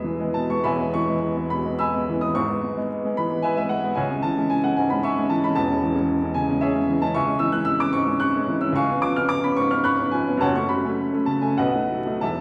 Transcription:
Already playing: B2 E3 G#3 B3 G#4 D#5 E5
0.04 E3
0.20 G#3 B3
0.34 B2 A5
0.50 G#3 B3 C#6
0.64 E1 E2 E5 G#5 B5
0.79 G#3 B3
0.94 E3 C#6
1.09 G#3 B3
1.37 G#3 B3
1.50 B2 B5
1.65 G#3 B3
1.79 G#5 B5 E6
1.94 G#3 B3
2.09 E3
2.21 G#3 B3 D#6
2.34 G#1 G#2 C#6
2.50 G#3 B3
2.64 G#3
2.77 G#3 B3
3.05 G#3 B3
3.17 E3 B5
3.31 G#3 B3
3.42 B4 E5 G#5
3.57 G#3 B3 E5
3.69 G#3 F#5
3.83 G#3 B3
3.95 C#2 C#5 E5 G#5
4.11 G#3 C#4
4.22 E3 A5
4.38 G#3 C#4
4.50 G#5
4.64 G#3 C#4 F#5
4.77 G#2 G#5
4.90 G#3 C#4 B5
5.03 E5 G#5 C#6
5.18 G#3 C#4
5.30 E3 A5
5.44 G#3 C#4 B5
5.55 E1 E2 A5
5.70 G#3 C#4
5.82 E3
5.95 G#3 C#4
6.23 G#3 C#4
6.34 C#3 G#5
6.49 G#3 C#4
6.61 G#4 C#5 E5
6.74 G#3 C#4
6.88 E3
7.02 G#3 C#4 A5
7.14 C#2 E5 G#5 C#6
7.27 G#3 C#4
7.39 E3 E6
7.52 G#3 C#4 F#6
7.65 E6
7.80 G#3 C#4 D6
7.93 G#2 C#6
8.07 G#3 C#4
8.20 C#6 F#6
8.36 G#3 C#4
8.48 E3
8.61 G#3 C#4 E6
8.72 C#2 F5 C#6
8.77 G#5
8.90 B3 C#4
9.02 F3 D6
9.16 B3 C#4 F6
9.29 D6
9.44 B3 C#4 B5
9.56 G#2 C#6
9.71 B3 C#4 F6
9.84 B5 C#6 F#6
9.99 B3 C#4
10.11 F3 G#5
10.27 B3 C#4
10.37 F#1 F#2 A5
10.42 C#5 F#5
10.56 A3 C#4 C#6
10.69 F#3 B5
10.85 A3 C#4
11.13 A3 C#4
11.26 C#3 A5
11.41 A3 C#4 G#5
11.57 B1 B4 D#5 F#5
11.75 A3 D#4
11.91 F#3
12.06 A3 D#4
12.21 E1 E2 E5 A5

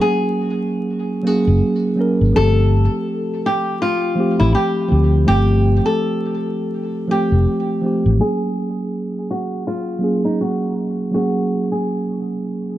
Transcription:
Already playing: F#3 A#3 C#4 G#4
0.01 G#4
1.22 F#3 A#3 C#4
1.27 F#4 G#4
1.47 F#1
1.96 F#3 A#3 C#4
2.01 A#4
2.21 G#1
2.33 G1 F3 A3 C4 A4
2.38 G4
3.46 G4
3.82 F4
4.15 F3 A3 C4
4.20 G4
4.40 A1 E4
4.55 G4
4.88 D2 F3 A3 C4
4.93 G4
5.25 G1 F3 A3 C4 G4
5.30 G4
5.86 A4
7.07 F3 A3 C4 G4
7.12 G4
7.32 F1
7.82 F3 A3 C4
7.86 G4
8.06 A1
8.18 F#3 A#3 C#4 G#4
8.23 G#4
9.31 F#4
9.67 F4
9.99 F#3 A#3 C#4
10.04 G#4
10.25 D#4
10.41 F#4
11.11 F#3 A#3 C#4 F#4
11.16 G#4
11.72 G#4

